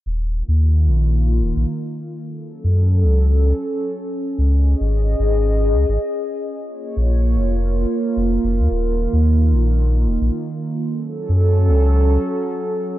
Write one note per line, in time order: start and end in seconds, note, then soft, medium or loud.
0.06 0.43 D#1 medium
0.06 2.20 D#3 medium
0.06 2.20 A#3 medium
0.06 2.20 F4 medium
0.48 0.89 D#2 medium
0.87 1.42 A#1 loud
1.41 1.53 D#1 loud
1.56 1.65 A#1 medium
2.22 4.36 F#3 medium
2.22 6.51 C#4 medium
2.22 4.36 A4 medium
2.64 3.05 F#2 medium
3.03 3.53 C#2 medium
4.38 4.75 C#2 medium
4.38 6.52 G#4 medium
4.38 6.52 D#5 medium
4.80 5.15 G#1 medium
5.19 5.75 G#1 loud
5.73 5.85 C#2 loud
5.89 5.98 G#1 medium
6.55 10.83 A#3 medium
6.55 10.83 F4 medium
6.55 8.69 C#5 medium
6.97 7.37 A#1 medium
7.36 7.85 F1 loud
8.17 8.38 F1 loud
8.44 8.60 F1 medium
8.59 8.68 D#2 medium
8.71 9.07 D#1 loud
8.71 10.85 D#3 medium
9.13 9.53 D#2 medium
9.52 10.07 A#1 medium
10.06 10.18 D#1 loud
10.21 10.30 A#1 medium
10.87 12.99 F#3 medium
10.87 12.99 C#4 medium
10.87 12.99 A4 medium
11.29 11.70 F#2 medium
11.68 12.18 C#2 loud